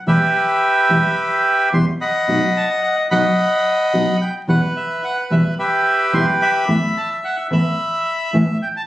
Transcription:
0.06 E2 B2 E3 G3 B3 E4 G4 B4 E5
0.89 E2 B2 E3 G3 B3 E4
1.72 E2 B2 E3 G3 B3 E4 C6
2.01 D#5 F#5 B5
2.27 B2 F#3 B3 D#4 F#4
2.57 A5
2.84 F#5
3.11 B2 F#3 B3 D#4 F#4 D#5 F#5 B5
3.93 B2 F#3 B3 D#4 F#4
4.22 G5
4.48 E2 B2 E3 G3 B3 E4 B4 F#5
4.77 E5
5.04 F#5
5.30 E2 B2 E3 G3 B3 E4 E5
5.59 G4 B4 E5
6.13 E2 B2 E3 G3 B3 E4 C6
6.42 E5 B5
6.67 A2 E3 A3 B3 E4
6.97 A5
7.24 F#5
7.51 A2 E3 A3 B3 E4 E5 B5
8.33 A2 E3 A3 B3 E4
8.62 G5
8.76 A5

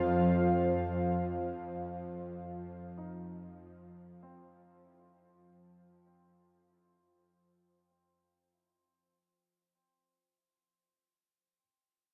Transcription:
Already playing: F2 F3 F4 C5 F5
2.98 D#4
4.23 C4

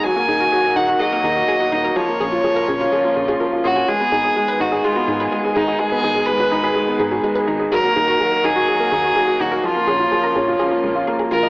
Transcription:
Already playing: D#3
0.03 F#3 A#3 F#4 G#4 G#5
0.16 A#3 F#4
0.28 D#1 D#4 G#4
0.40 F#4 A#4
0.52 F#3 G#4
0.64 A#4
0.75 D#1 D#4 G#4 F#5
0.88 F#4
1.00 F#3 G#4 D#5
1.12 A#3 A#4
1.23 D#2 D#4 G#4
1.36 F#4
1.48 F#3 G#4
1.60 F#4
1.72 D#1 D#4 G#4
1.84 F#4 A#4
1.96 C#3 F3 F4 G#4 C#5
2.08 A#3
2.20 A#1 C#4 G#4
2.32 F4
2.44 F3 G#4
2.56 A#4
2.68 A#1 C#4 G#4
2.80 F4
2.92 F3 G#4
3.04 A#3 F4
3.16 A#1 C#4 G#4
3.28 F4 G#4
3.40 F3 A#4
3.52 F4
3.64 A#1 C#4 F#4 G#4
3.76 F4 G#5
3.88 D#3 G#3 B3 G#4
4.00 B3
4.12 G#1 D#4 G#4
4.24 F#4 G#4
4.36 G#3 G#4
4.48 B4
4.60 G#1 D#4 F#4 G#4
4.72 G#4
4.84 G#3 F4 G#4
4.96 B3 F#4
5.08 G#2 D#4 G#4
5.20 G#4 B4
5.32 G#3 G#4
5.45 G#4
5.55 G#1 D#4 G#4
5.68 F#4 G#4
5.79 G#3 G#4
5.92 B3 B4
6.04 G#1 D#4 G#4
6.15 G#4
6.26 G#3 G#4 B4
6.40 F#4 B4
6.52 G#1 D#4 G#4
6.64 G#4 B4
6.76 G#3 G#4
6.88 B3
6.99 G#2 D#4 G#4
7.11 F#4 G#4
7.23 G#3 G#4
7.36 G#4 B4
7.47 G#1 D#4 G#4
7.60 G#4
7.72 F#3 A#3 F#4 G#4 A#4
7.84 A#3 F#4
7.96 D#1 D#4 G#4
8.08 F#4 A#4
8.20 F#3 G#4
8.32 A#4
8.44 D#1 D#4 G#4
8.56 F#4
8.68 F#3 G#4
8.80 A#3 A#4
8.92 D#2 D#4 G#4
9.04 F#4
9.16 F#3 G#4
9.28 F#4
9.40 D#1 D#4 F#4 G#4
9.52 F#4 A#4
9.63 C#3 F3 F4 G#4
9.76 A#3
9.87 A#1 C#4 G#4
9.99 F4
10.12 F3 G#4
10.23 A#4
10.35 A#1 C#4 G#4
10.48 F4
10.59 F3 G#4
10.71 A#3 F4
10.84 A#1 G#3 A#3
10.95 F4 F5
11.07 A#3 G#4
11.19 G#4 A#4
11.31 A#1 F4 G#4 A#4
11.43 F3 D#5

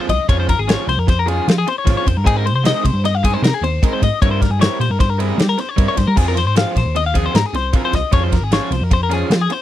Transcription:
Already playing: F2 G#3
0.09 C2 D#5, muted overdriven electric guitar stroke, kick, ride
0.29 F2 F3 C#4 F4 G#4 C#5, kick, ride
0.40 C5
0.49 A#4, muted overdriven electric guitar stroke, kick, ride
0.58 G#1 G#4
0.68 F3 C#4 F4 G#4 C#5, snare, ride
0.87 C2 C5, muted overdriven electric guitar stroke, snare, ride
0.97 F2 A#4
1.08 C5, muted overdriven electric guitar stroke, kick, snare, ride
1.19 A#4
1.26 F3 C#4 F4 G#4, ride
1.47 F3 F4, muted overdriven electric guitar stroke, snare, ride
1.58 G#4
1.67 C5, muted overdriven electric guitar stroke, ride
1.78 C#5
1.85 G#1 F3 C#4 F4 G#4, kick, snare, ride
1.97 C#5
2.06 F2 C5, muted overdriven electric guitar stroke, kick, ride
2.17 G2 A#4
2.25 G#2 G#3 C4 D#4 G#4, kick, ride
2.37 A#4
2.45 C5, muted overdriven electric guitar stroke, ride
2.55 C3 C5
2.64 G#3 C4 D#4 G#4 D#5, snare, ride
2.84 C3 C5, muted overdriven electric guitar stroke, kick, ride
2.93 G2
3.04 D#5, muted overdriven electric guitar stroke, snare, ride
3.15 F5
3.23 G#3 C4 D#4 G#4, kick, ride
3.34 C5
3.42 C3 A#4, muted overdriven electric guitar stroke, snare, ride
3.54 G#4
3.61 D#2 C5, muted overdriven electric guitar stroke, ride
3.83 G#3 C4 D#4 G#4 A#4, kick, ride
3.93 C5
4.02 G#2 D#5, muted overdriven electric guitar stroke, kick, ride
4.22 G2 G3 C4 E4 A#4 C#5, kick, ride
4.31 C5
4.41 A#4, muted overdriven electric guitar stroke, kick, snare, ride
4.50 G2 G#4
4.60 G3 C4 E4 A#4 C#5, snare, ride
4.80 A#2 C5, muted overdriven electric guitar stroke, snare, ride
4.90 G2 A#4
4.99 C5, muted overdriven electric guitar stroke, kick, snare, ride
5.10 A#4
5.19 G3 C4 E4 G#4 A#4, ride
5.38 G3 G4, muted overdriven electric guitar stroke, snare, ride
5.49 A#4
5.58 C5, muted overdriven electric guitar stroke, snare, ride
5.69 C#5
5.77 G2 G3 C4 E4 A#4, kick, ride
5.88 C#5
5.97 G2 C5, muted overdriven electric guitar stroke, kick, snare, ride
6.07 G3 A#4
6.16 F2 F3 C4 F4 G#4, kick, crash
6.28 A#4
6.35 C5, muted overdriven electric guitar stroke, snare, ride
6.47 G#2 C5
6.56 F3 C4 F4 G#4 F5, snare, ride
6.75 A#2 C5, muted overdriven electric guitar stroke, kick, snare, ride
6.85 D#2
6.95 D#5, muted overdriven electric guitar stroke, ride
7.06 F5
7.14 F3 C4 F4 G#4, kick, ride
7.26 C5
7.34 G#2 A#4, muted overdriven electric guitar stroke, snare, ride
7.46 G#4
7.53 C2 C5, muted overdriven electric guitar stroke, snare, ride
7.73 F3 C4 F4 G#4 A#4, kick, ride
7.85 C5
7.93 C2 D#5, muted overdriven electric guitar stroke, kick, snare, ride
8.12 F2 F3 C#4 F4 G#4 C#5, kick, ride
8.24 C5
8.32 A#4, muted overdriven electric guitar stroke, kick, snare, ride
8.41 G#1 G#4
8.52 F3 C#4 F4 G#4 C#5, snare, ride
8.71 C2 C5, muted overdriven electric guitar stroke, snare, ride
8.81 F2 A#4
8.91 C5, muted overdriven electric guitar stroke, kick, ride
9.03 A#4
9.10 F3 C#4 F4 G#4, snare, ride
9.30 F3 F4, muted overdriven electric guitar stroke, snare, ride
9.41 G#4
9.50 C5, muted overdriven electric guitar stroke, ride

